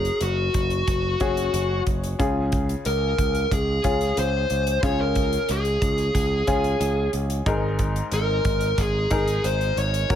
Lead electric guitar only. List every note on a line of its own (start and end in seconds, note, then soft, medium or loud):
0.00 0.22 G#4 medium
0.22 1.83 F#4 medium
2.86 3.53 A#4 medium
3.53 4.19 G#4 medium
4.19 4.80 C5 medium
4.84 5.00 C#5 loud
5.01 5.51 A#4 medium
5.51 7.11 G#4 medium
8.14 8.81 A#4 medium
8.79 9.47 G#4 medium
9.45 9.78 C5 medium
9.79 10.15 C#5 medium